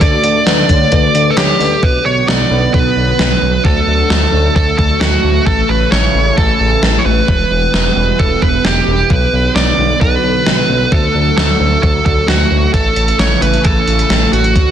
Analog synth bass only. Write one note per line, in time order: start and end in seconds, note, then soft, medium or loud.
0.01 0.17 D2 loud
0.24 0.40 D2 medium
0.47 0.62 D2 loud
0.69 0.85 D2 loud
0.92 1.08 D2 loud
1.15 1.31 D2 loud
1.37 1.53 D2 loud
1.60 1.76 D2 loud
1.83 1.99 B1 loud
2.06 2.22 B1 loud
2.28 2.44 B1 loud
2.51 2.67 B1 loud
2.74 2.90 B1 loud
2.97 3.12 B1 loud
3.19 3.35 B1 loud
3.42 3.58 B1 loud
3.65 3.81 D2 loud
3.88 4.03 D2 medium
4.10 4.26 D2 loud
4.33 4.49 D2 loud
4.56 4.72 D2 loud
4.79 4.94 D2 loud
5.01 5.17 D2 loud
5.24 5.40 D2 loud
5.47 5.62 A1 loud
5.69 5.85 A1 loud
5.92 6.08 A1 loud
6.15 6.31 A1 loud
6.38 6.54 A1 loud
6.60 6.76 A1 loud
6.83 6.99 A1 loud
7.06 7.22 A1 loud
7.28 7.44 E1 loud
7.51 7.67 E1 medium
7.74 7.90 E1 loud
7.97 8.12 E1 loud
8.20 8.35 E1 loud
8.42 8.58 E1 loud
8.65 8.81 E1 loud
8.88 9.03 E1 loud
9.10 9.26 B1 loud
9.33 9.49 B1 loud
9.56 9.72 B1 loud
9.78 9.94 B1 loud
10.01 10.17 B1 loud
10.24 10.40 B1 loud
10.47 10.62 B1 loud
10.69 10.85 B1 loud
10.92 11.08 D2 loud
11.15 11.31 D2 medium
11.37 11.53 D2 loud
11.60 11.76 D2 loud
11.83 11.99 D2 loud
12.06 12.22 D2 loud
12.28 12.44 D2 loud
12.51 12.67 D2 loud
12.74 12.90 A1 loud
12.97 13.12 A1 medium
13.19 13.35 A1 loud
13.42 13.58 A1 loud
13.65 13.81 A1 loud
13.88 14.03 A1 medium
14.10 14.26 A1 loud
14.33 14.57 A1 loud
14.56 14.71 D2 loud